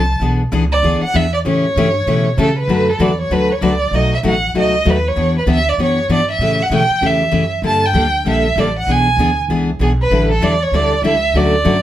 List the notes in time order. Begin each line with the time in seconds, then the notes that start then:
Already playing: C2 A5
0.20 B1 E3 B3 D4 G#4
0.52 C#2 E3 B3 D4 G#4
0.72 D5
0.83 D2 E3 B3 D4 G#4
1.01 F#5, muted upright bass stroke
1.14 E2 E3 B3 D4 G#4 E5
1.34 D5
1.45 A2 C#3 E3 A3 C#4 G4 C#5
1.76 G2 C#3 E3 A3 C#4 G4
2.06 B2 C#3 E3 A3 C#4 G4
2.37 C#3 E3 A3 C#4 G4 A4
2.59 B4
2.67 F#2 D3 F#3 A3 D4 F#4 B4
2.90 A4
2.99 E2 D3 F#3 A3 D4 F#4 B4 D5
3.21 C#5
3.30 D2 D3 F#3 A3 D4 F#4 B4
3.52 C#5
3.61 C#2 D3 F#3 A3 D4 F#4 B4 D5
3.91 B1 B2 F#3 A3 D#4 F#4
3.95 D#5
4.14 E5
4.23 A1 B2 F#3 A3 D#4 F#4 F#5
4.54 C#2 B2 F#3 A3 D#4 F#4
4.59 D#5
4.85 D#2 B2 F#3 A3 D#4 F#4
4.90 B4
5.08 C#5
5.16 E2 E3 B3 D4 G4
5.38 B4
5.46 D2 E3 B3 D4 G4
5.50 E5
5.69 D5
5.77 F#2 E3 B3 D4 G4
5.83 C#5
6.08 G2 E3 B3 D4 G4
6.14 D5
6.31 E5
6.38 A2 C#3 E3 A3 C#4 G4
6.63 F#5
6.69 B2 C#3 E3 A3 C#4 G4
6.75 G5
6.89 muted upright bass stroke
7.01 E2 C#3 E3 A3 C#4 G4
7.06 E5
7.31 F#2 C#3 E3 A3 C#4 G4
7.62 G2 D3 G3 A#3 D4 A4
7.67 A5
7.86 G5
7.93 D2 D3 G3 A#3 D4 A4
8.25 A#1 D3 G3 A#3 D4 A4
8.30 E5
8.56 A1 D3 G3 A#3 D4 A4
8.60 D5
8.79 F#5
8.86 B1 E3 B3 D4 G#4
8.92 G#5
9.17 D2 E3 B3 D4 G#4
9.48 C#2 E3 B3 D4 G#4
9.79 B1 E3 B3 D4 G#4
10.01 B4
10.10 A1 D3 G3 D4 E4 A4
10.32 A4
10.41 E2 D3 G3 D4 E4 A4 D5
10.63 C#5
10.71 D2 D3 G3 D4 E4 A4
10.75 D5
11.02 C#2 D3 G3 D4 E4 A4 E5
11.33 D2 D3 F#3 A3 C#4 F#4 D5
11.65 G2 D3 F#3 A3 C#4 F#4